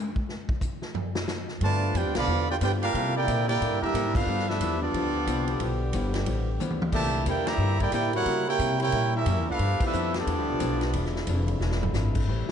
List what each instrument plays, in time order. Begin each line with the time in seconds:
0.16 kick
0.29 snare
0.49 kick
0.61 kick, hi-hat pedal
0.82 snare
0.95 floor tom
1.15 snare
1.28 snare, hi-hat pedal
1.48 snare
1.60 upright bass G2, hollow-body jazz guitar G2 F3 B3 E4, trombone section D3 F3 G3 A3 B3 F4, trumpet section F4 B4 D5 A5, kick, ride
1.94 upright bass F2, hollow-body jazz guitar G2 F3 B3 E4, trombone section B3 D4 G4, trumpet section F4 B4 D5 G5, kick, hi-hat pedal, ride
2.04 upright bass D2
2.14 upright bass B1, trombone section D3 F3 B3, trumpet section A4 D5 F5 B5, snare, ride
2.27 upright bass E2, hollow-body jazz guitar G2 F3 B3 E4
2.49 trombone section B3 D4 G4, trumpet section F4 B4 D5 G5
2.61 upright bass G2, hollow-body jazz guitar G2 F3 B3 E4, trombone section B3 D4 G4, trumpet section F4 B4 D5 G5, kick, hi-hat pedal, ride
2.82 trombone section G3 A#3 F4, trumpet section D4 G4 A#4 F5, ride
2.92 upright bass C3, hollow-body jazz guitar C3 A#3, trombone section D3 A#3 E4, kick, ride
2.96 hollow-body jazz guitar E4 A4
3.16 trombone section A#3 E4 G4, trumpet section E4 A#4 D5 G5
3.28 upright bass A#2, hollow-body jazz guitar C3 A#3 E4 A4, kick, hi-hat pedal, ride
3.48 trombone section A#3 E4 G4, trumpet section E4 A#4 D5 G5, ride
3.61 upright bass A2, hollow-body jazz guitar C3 A#3 E4 A4, kick, ride
3.71 upright bass G2
3.81 upright bass E2, trombone section G3 A#3 E4, trumpet section D4 G4 A#4 E5
3.94 upright bass G#2, hollow-body jazz guitar C3 A#3 E4 A4, kick, hi-hat pedal, ride
4.14 trombone section B3 D4 F4, trumpet section D4 A4 B4 F5, kick, crash
4.26 upright bass G2, hollow-body jazz guitar G2 F3 B3 E4, trombone section D3 B3 G4
4.39 snare
4.46 trombone section F3 B3 E4, trumpet section D4 A4 B4 E5, snare
4.60 upright bass E2, hollow-body jazz guitar G2 F3 B3 E4, kick, hi-hat pedal, ride
4.79 trombone section F3 B3 D4, trumpet section B3 F4 A4 D5
4.94 upright bass D2, hollow-body jazz guitar G2 F3 B3 E4, kick, ride
5.26 upright bass C2, hollow-body jazz guitar G2 F3 B3 E4, kick, hi-hat pedal, ride
5.48 ride
5.60 upright bass B1, hollow-body jazz guitar G2 F3 B3 E4, kick, ride
5.93 upright bass G1, hollow-body jazz guitar G2 F3 B3 E4, kick, hi-hat pedal, ride
6.14 snare, ride
6.26 upright bass A1, hollow-body jazz guitar G2 F3 B3 E4, kick, ride
6.59 upright bass D2, hollow-body jazz guitar G2 F3 B3 E4, hi-hat pedal, mid tom
6.70 mid tom
6.82 mid tom
6.91 upright bass C2, trombone section A#2 D3 E3 A3 E4, hollow-body jazz guitar C3 A#3 E4 A4, trumpet section G4 D5 E5 A5, kick, crash
7.26 upright bass E2, hollow-body jazz guitar C3 A#3 E4 A4, trombone section A#3 E4 G4, trumpet section E4 A#4 D5 G5, kick, hi-hat pedal, ride
7.47 trombone section E3 G3 A#3, trumpet section G4 D5 E5 A#5, snare, ride
7.58 upright bass G2, hollow-body jazz guitar C3 A#3 E4
7.62 hollow-body jazz guitar A4
7.80 trombone section A#3 E4 G4, trumpet section E4 A#4 D5 G5, kick, ride
7.91 upright bass A2, hollow-body jazz guitar C3 A#3 E4 A4, trombone section A#3 E4 G4, trumpet section E4 A#4 D5 G5, kick, hi-hat pedal, ride
8.13 trombone section G3 A#3 F#4, trumpet section E4 A#4 C#5 F#5, ride
8.26 trombone section A#2 G3, upright bass C#3, hollow-body jazz guitar C#3 G3 A#3 E4, kick, ride
8.46 trombone section A#3 E4 G4, trumpet section E4 A#4 C#5 G5
8.59 upright bass C3, hollow-body jazz guitar C#3 G3 A#3 E4, kick, hi-hat pedal, ride
8.78 trombone section A#3 E4 G4, trumpet section E4 A#4 C#5 G5, ride
8.92 upright bass A#2, hollow-body jazz guitar C#3 G3 A#3 E4, kick, ride
9.14 trombone section G3 A#3 E4, trumpet section C#4 G4 A#4 E5
9.26 upright bass F#2, hollow-body jazz guitar C#3 G3 A#3 E4, kick, hi-hat pedal, ride
9.37 upright bass E2
9.46 upright bass C#2, trombone section B3 D4 F4, trumpet section D4 A4 B4 F5
9.59 upright bass G2, hollow-body jazz guitar G2 F3 B3 E4, trombone section F3 A3 B3 G4, kick, ride
9.80 trombone section F3 B3 E4, muted upright bass stroke, kick, crash
9.85 trumpet section D4 A4 B4 E5
9.93 upright bass F2, hollow-body jazz guitar G2 F3 B3 E4, hi-hat pedal
10.14 trombone section F3 B3 D4, snare, ride
10.19 trumpet section B3 F4 A4 D5
10.27 upright bass E2, hollow-body jazz guitar G2 F3 B3 E4, kick, ride
10.39 upright bass D2
10.50 upright bass B1
10.60 upright bass B1, hollow-body jazz guitar G2 F3 B3 E4, kick, hi-hat pedal, ride
10.81 snare, ride
10.93 upright bass E1, trombone section D3 F3 G#3 E4, hollow-body jazz guitar E3 G#3 D4 F4, kick, ride
11.05 snare
11.16 snare
11.27 upright bass F1, hollow-body jazz guitar E3 G#3 D4 F4, kick, hi-hat pedal, ride
11.48 ride
11.60 upright bass E1, hollow-body jazz guitar E3 G#3 D4 F4, snare
11.71 snare
11.83 floor tom
11.93 upright bass G#1, hollow-body jazz guitar E3 G#3 D4 F4, snare, hi-hat pedal
12.15 kick, crash
12.27 upright bass A1, hollow-body jazz guitar A2 G3 C4 E4, trombone section E3 G3 A3, kick
12.48 muted upright bass stroke